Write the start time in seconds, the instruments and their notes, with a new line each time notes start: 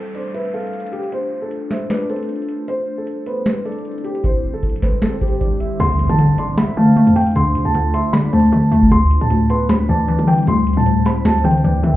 Already playing: ambient pad A3 D4 F4 C5, felt piano A4, downlifter
0.15 felt piano C5, soft synth lead D5, closed hi-hat
0.34 felt piano B4, soft synth lead E5, closed hi-hat
0.54 felt piano A4, soft synth lead F5, closed hi-hat
0.60 closed hi-hat
0.67 closed hi-hat
0.73 closed hi-hat
0.80 closed hi-hat
0.86 closed hi-hat
0.92 felt piano G4, closed hi-hat
1.03 closed hi-hat
1.12 felt piano C5, closed hi-hat
1.42 felt piano A4
1.51 closed hi-hat
1.70 felt piano C5, soft synth lead E5, snare, closed hi-hat
1.90 felt piano B4, soft synth lead D5, snare, closed hi-hat
2.10 felt piano A4, soft synth lead C5, closed hi-hat
2.16 closed hi-hat
2.23 closed hi-hat
2.29 closed hi-hat
2.36 closed hi-hat
2.42 closed hi-hat
2.49 closed hi-hat
2.68 ambient pad D3 G3 C4 E4, felt piano C5, closed hi-hat
2.98 felt piano A4
3.07 closed hi-hat
3.26 soft synth lead B4, felt piano C5, closed hi-hat
3.46 felt piano B4, soft synth lead C5, snare, closed hi-hat
3.65 felt piano A4, soft synth lead D5, closed hi-hat
3.72 closed hi-hat
3.79 closed hi-hat
3.85 closed hi-hat
3.91 closed hi-hat
3.98 closed hi-hat
4.04 felt piano G4, closed hi-hat
4.15 closed hi-hat
4.24 felt piano C5, kick, closed hi-hat
4.54 felt piano A4
4.63 kick, closed hi-hat
4.69 closed hi-hat
4.76 closed hi-hat
4.82 felt piano B4, soft synth lead C5, kick, snare, closed hi-hat
5.02 felt piano A4, snare, closed hi-hat
5.21 felt piano G4, kick, closed hi-hat
5.28 closed hi-hat
5.34 closed hi-hat
5.41 soft synth lead D5, kick, closed hi-hat
5.60 soft synth lead E5, closed hi-hat
5.80 808-style bass D2, synth pluck D3, ambient pad A3 D4 F4 C5, felt piano C6, closed hi-hat, crash, impact
5.99 closed hi-hat
6.09 808-style bass D3, felt piano A5, closed hi-hat
6.19 synth pluck D3, closed hi-hat
6.38 soft synth lead D5, felt piano C6, closed hi-hat
6.58 synth pluck D3, soft synth lead E5, felt piano B5, snare, closed hi-hat
6.77 808-style bass D3, synth pluck A3, soft synth lead F5, felt piano A5
6.96 synth pluck A3, closed hi-hat
7.07 808-style bass F2, closed hi-hat
7.16 synth pluck A3, felt piano G5, closed hi-hat
7.21 closed hi-hat
7.27 closed hi-hat
7.31 closed hi-hat
7.36 808-style bass D2, synth pluck D3, felt piano C6, closed hi-hat
7.55 808-style bass D3, closed hi-hat
7.65 808-style bass D2, felt piano A5
7.74 synth pluck D3, closed hi-hat
7.94 soft synth lead E5, felt piano C6, closed hi-hat
8.13 synth pluck D3, soft synth lead D5, felt piano B5, snare, closed hi-hat
8.33 808-style bass D2, synth pluck A3, soft synth lead C5, felt piano A5, closed hi-hat
8.40 closed hi-hat
8.46 closed hi-hat
8.52 808-style bass D3, synth pluck A3, closed hi-hat
8.72 808-style bass D2, synth pluck A3, closed hi-hat
8.82 kick
8.91 synth pluck D2, 808-style bass D2, ambient pad G3 C4 E4 C5, felt piano C6, closed hi-hat
9.11 closed hi-hat
9.21 808-style bass A2, felt piano A5, closed hi-hat
9.30 synth pluck D2, closed hi-hat
9.50 soft synth lead B4, felt piano C6, closed hi-hat
9.69 synth pluck D2, soft synth lead C5, felt piano B5, snare, closed hi-hat
9.89 808-style bass D2, synth pluck E3, soft synth lead D5, felt piano A5
10.08 synth pluck E3, closed hi-hat
10.19 808-style bass D3, closed hi-hat
10.27 synth pluck E3, felt piano G5, closed hi-hat
10.33 closed hi-hat
10.38 closed hi-hat
10.43 closed hi-hat
10.47 808-style bass D2, synth pluck D2, felt piano C6, closed hi-hat
10.67 closed hi-hat
10.73 808-style bass A2, felt piano A5, closed hi-hat
10.80 closed hi-hat
10.86 synth pluck D2, closed hi-hat
11.06 soft synth lead C5, felt piano B5, snare, closed hi-hat
11.25 synth pluck D2, felt piano A5, snare, closed hi-hat
11.32 closed hi-hat
11.38 closed hi-hat
11.44 808-style bass D3, synth pluck E3, felt piano G5, closed hi-hat
11.51 closed hi-hat
11.58 closed hi-hat
11.64 808-style bass D2, synth pluck E3, soft synth lead D5, closed hi-hat
11.83 808-style bass D3, synth pluck E3, soft synth lead E5, closed hi-hat